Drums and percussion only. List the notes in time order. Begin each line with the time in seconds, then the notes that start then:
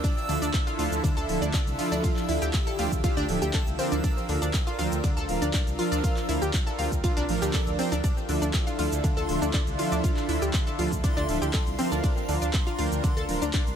0.04 kick, closed hi-hat, ride, shaker
0.18 shaker
0.29 open hi-hat
0.42 closed hi-hat, shaker
0.54 kick, clap, closed hi-hat, ride, shaker
0.67 closed hi-hat, shaker
0.79 open hi-hat
0.92 closed hi-hat, shaker
1.04 kick, closed hi-hat, ride, shaker
1.18 shaker
1.29 open hi-hat
1.42 closed hi-hat, shaker
1.54 kick, clap, closed hi-hat, ride, shaker
1.67 closed hi-hat, shaker
1.79 open hi-hat
1.92 closed hi-hat, shaker
2.04 kick, closed hi-hat, ride, shaker
2.17 clap, shaker
2.29 open hi-hat
2.42 closed hi-hat, shaker
2.53 kick, clap, closed hi-hat, ride, shaker
2.67 closed hi-hat, shaker
2.79 open hi-hat
2.92 kick, closed hi-hat, shaker
3.04 kick, closed hi-hat, ride, shaker
3.18 shaker
3.29 open hi-hat
3.42 closed hi-hat, shaker
3.54 kick, clap, closed hi-hat, ride, shaker
3.67 closed hi-hat, shaker
3.79 open hi-hat
3.92 closed hi-hat, shaker
4.04 kick, closed hi-hat, ride, shaker
4.18 shaker
4.29 open hi-hat
4.42 closed hi-hat, shaker
4.54 kick, clap, closed hi-hat, ride, shaker
4.67 closed hi-hat, shaker
4.79 open hi-hat
4.92 closed hi-hat, shaker
5.04 kick, closed hi-hat, ride, shaker
5.18 shaker
5.29 open hi-hat
5.42 closed hi-hat, shaker
5.54 kick, clap, closed hi-hat, ride, shaker
5.67 closed hi-hat, shaker
5.79 open hi-hat
5.92 closed hi-hat, shaker
6.04 kick, closed hi-hat, ride, shaker
6.17 clap, closed hi-hat, shaker
6.29 open hi-hat
6.42 closed hi-hat, shaker
6.54 kick, clap, closed hi-hat, ride, shaker
6.67 closed hi-hat, shaker
6.79 open hi-hat
6.92 kick, closed hi-hat, shaker
7.04 kick, closed hi-hat, ride, shaker
7.17 closed hi-hat, shaker
7.29 open hi-hat
7.42 closed hi-hat, shaker
7.54 kick, clap, closed hi-hat, ride, shaker
7.67 closed hi-hat, shaker
7.79 open hi-hat
7.92 closed hi-hat, shaker
8.04 kick, closed hi-hat, ride, shaker
8.18 shaker
8.29 open hi-hat
8.42 closed hi-hat, shaker
8.54 kick, clap, closed hi-hat, ride, shaker
8.67 closed hi-hat, shaker
8.79 open hi-hat
8.92 closed hi-hat, shaker
9.04 kick, closed hi-hat, ride, shaker
9.18 shaker
9.29 open hi-hat
9.42 closed hi-hat, shaker
9.54 kick, clap, closed hi-hat, ride, shaker
9.67 closed hi-hat, shaker
9.79 open hi-hat
9.92 closed hi-hat, shaker
10.04 kick, closed hi-hat, ride, shaker
10.17 clap, shaker
10.29 open hi-hat
10.42 closed hi-hat, shaker
10.54 kick, clap, closed hi-hat, ride, shaker
10.67 closed hi-hat, shaker
10.79 open hi-hat
10.92 kick, closed hi-hat, shaker
11.04 kick, closed hi-hat, ride, shaker
11.18 shaker
11.29 open hi-hat
11.42 closed hi-hat, shaker
11.53 kick, clap, closed hi-hat, ride, shaker
11.67 closed hi-hat, shaker
11.79 open hi-hat
11.92 closed hi-hat, shaker
12.04 kick, closed hi-hat, ride, shaker
12.17 shaker
12.29 open hi-hat
12.42 closed hi-hat, shaker
12.53 kick, clap, closed hi-hat, ride, shaker
12.67 closed hi-hat, shaker
12.79 open hi-hat
12.92 closed hi-hat, shaker
13.04 kick, closed hi-hat, ride, shaker
13.18 shaker
13.29 open hi-hat
13.42 closed hi-hat, shaker
13.53 kick, clap, closed hi-hat, ride, shaker
13.67 closed hi-hat, shaker